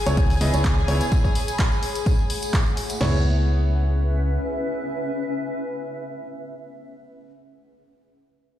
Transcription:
Already playing: G#4 C#5 G#5 B5, sub drop
0.06 C#2 B3 E4 G#4 C#5, closed hi-hat, tambourine
0.17 kick, closed hi-hat, tambourine
0.30 open hi-hat, tambourine
0.41 C#2 B3 E4 G#4 D#5, open hi-hat
0.54 C#2 B3 E4 G#4 C#5, closed hi-hat, tambourine
0.65 kick, clap, closed hi-hat
0.78 tambourine
0.88 C#2 B3 E4 G#4 C#5, open hi-hat
1.01 closed hi-hat, tambourine
1.12 kick, closed hi-hat, tambourine
1.25 kick, tambourine
1.34 A3, open hi-hat
1.48 closed hi-hat, tambourine
1.59 kick, clap, closed hi-hat, tambourine
1.72 tambourine
1.83 F#5, open hi-hat
1.95 closed hi-hat, tambourine
2.06 kick, closed hi-hat, tambourine
2.19 tambourine
2.30 open hi-hat
2.42 closed hi-hat, tambourine
2.53 kick, clap, closed hi-hat
2.66 tambourine
2.77 open hi-hat
2.90 closed hi-hat, tambourine
3.01 C#2 B3 C#4 E4 G#4 C#5, snare, floor tom, crash
3.08 B4
3.16 E5

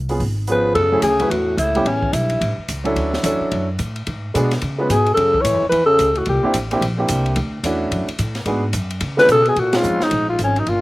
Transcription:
Already playing: C2
0.09 B3 C#4 F4 G#4, open hi-hat
0.20 G#1, kick, open hi-hat
0.47 F3 B3 C#4 F4 G#4, closed hi-hat
0.51 B4
0.75 F#2 A4, kick, ride
0.79 C#3
0.92 F#3 A3 C#4 E4 G#4
1.02 D2 C#3 G#4, kick, hi-hat pedal, ride
1.19 F#3 A3 C#4 E4 B4, ride
1.30 E2 A2 F#4, kick, ride
1.57 C#2 E4, kick, hi-hat pedal, ride
1.61 A2
1.75 G3 B3 C#4 E4 G4, ride
1.85 A1 E2 C#4, kick, ride
2.02 kick
2.13 B1 G2 E4, hi-hat pedal, ride
2.30 ride
2.41 A1, kick, ride
2.58 muted upright bass stroke
2.68 C#2, kick, hi-hat pedal, ride
2.84 F#3 C#4 D4 E4 A4, ride
2.96 D2, kick, ride
3.13 snare
3.23 E2 F#3 C#4 D4 E4 A4, kick, hi-hat pedal, ride
3.40 muted upright bass stroke
3.51 F#2, kick, ride
3.79 A2, kick, hi-hat pedal, ride
3.96 ride
4.07 G#2, kick, ride
4.34 B2 G#3 B3 D4 F#4 G#4, kick, hi-hat pedal, ride
4.51 snare, ride
4.61 C#3, kick, ride
4.78 G#3 B3 C#4 F4 B4
4.90 G#2 B2 G#4, kick, hi-hat pedal, ride
5.06 ride
5.15 F#2 C#3 A4, kick, ride
5.34 kick
5.41 A2 E3 C#5, kick, hi-hat pedal, ride
5.54 F#2
5.63 E2
5.70 E2 E3 B4, kick, ride
5.86 C#3 A4
5.99 C#2, kick, hi-hat pedal, ride
6.15 A2 F#4, ride
6.25 C2 A#2 G4, kick, ride
6.43 A#3 C4 D4 E4 G4, muted upright bass stroke
6.54 A1, kick, hi-hat pedal, ride
6.71 A#3 C4 D4 E4 G4, ride
6.81 A#1, kick, ride
6.98 A#3 C4 D4 E4 G4
7.08 C2, kick, hi-hat pedal, ride
7.26 ride
7.36 D2, kick, ride
7.63 E2 A3 C#4 D4 E4 F#4, kick, hi-hat pedal, ride
7.91 F#2, kick, ride
8.08 muted upright bass stroke, ride
8.19 A2, kick, hi-hat pedal, ride
8.35 snare, ride
8.46 G#2 G#3 B3 D4 F#4 G#4, kick, ride
8.73 F#2, kick, hi-hat pedal, ride
8.90 ride
9.01 C#3, kick, ride
9.17 D3 G#3 B3 C#4 F4 B4, snare
9.28 B2 C#3 A4, kick, hi-hat pedal, ride
9.45 B2 G#4, ride
9.56 A#2 F#4, kick, ride
9.73 G#2 G#3 C4 C#4 F4, snare, ride
9.83 F2, hi-hat pedal
10.00 G#2 D#4, muted upright bass stroke, snare
10.11 A#1, kick, ride
10.29 G#2 F4
10.39 G#1 F2, kick, hi-hat pedal, ride
10.44 C#4
10.56 F#2 D#4, ride
10.66 G1 A#2 F4, kick, ride

